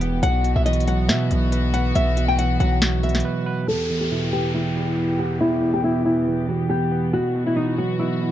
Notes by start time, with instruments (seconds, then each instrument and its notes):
Already playing: 808-style bass E1, tine electric piano E2 B2 E3, string section E3 B3 G4, nylon-string guitar G5
0.00 tine electric piano B3, closed hi-hat
0.22 808-style bass B1, tine electric piano B2, string section E3 B3 F#4, nylon-string guitar F#5, closed hi-hat
0.44 tine electric piano B2, closed hi-hat
0.56 808-style bass B1, nylon-string guitar E5
0.66 tine electric piano E3, nylon-string guitar D#5, closed hi-hat
0.73 closed hi-hat
0.80 closed hi-hat
0.87 tine electric piano F#3, nylon-string guitar F#5, closed hi-hat
1.08 808-style bass B2, tine electric piano B2, nylon-string guitar E5, snare, closed hi-hat
1.31 808-style bass B1, tine electric piano B2, closed hi-hat
1.52 tine electric piano B4, closed hi-hat
1.74 tine electric piano B4, nylon-string guitar F#5, closed hi-hat
1.95 808-style bass B1, tine electric piano B2, nylon-string guitar E5, closed hi-hat
2.17 tine electric piano B2, closed hi-hat
2.28 nylon-string guitar G5
2.38 tine electric piano E3, nylon-string guitar F#5, closed hi-hat
2.60 808-style bass B1, tine electric piano F#3, nylon-string guitar F#5, closed hi-hat
2.82 tine electric piano B2, snare, closed hi-hat
3.03 tine electric piano B2, nylon-string guitar E5, closed hi-hat
3.09 closed hi-hat
3.15 snare, closed hi-hat
3.20 closed hi-hat
3.25 tine electric piano B4
3.46 tine electric piano B4
3.68 tine electric piano E2, string section E3 B3 G4, nylon-string guitar A4, downlifter
3.90 tine electric piano E2
4.01 nylon-string guitar G4
4.11 tine electric piano B2, nylon-string guitar E4
4.33 tine electric piano E3, nylon-string guitar G4
4.54 tine electric piano E2, nylon-string guitar E4
4.76 tine electric piano E2
4.98 tine electric piano B3
5.19 tine electric piano B3, nylon-string guitar G4
5.41 tine electric piano E2, nylon-string guitar E4
5.62 tine electric piano E2
5.74 nylon-string guitar G4
5.84 tine electric piano B2, nylon-string guitar E4
6.05 tine electric piano E3, nylon-string guitar E4
6.27 tine electric piano E2
6.48 tine electric piano E2, nylon-string guitar F#4
6.70 tine electric piano B3, nylon-string guitar G4
6.92 tine electric piano B3
7.13 tine electric piano B2, nylon-string guitar F#4, string section F#4
7.35 tine electric piano B2
7.46 nylon-string guitar E4
7.56 tine electric piano E3, nylon-string guitar D#4
7.78 tine electric piano F#3, nylon-string guitar F#4
7.99 tine electric piano B2, nylon-string guitar E4
8.21 tine electric piano B2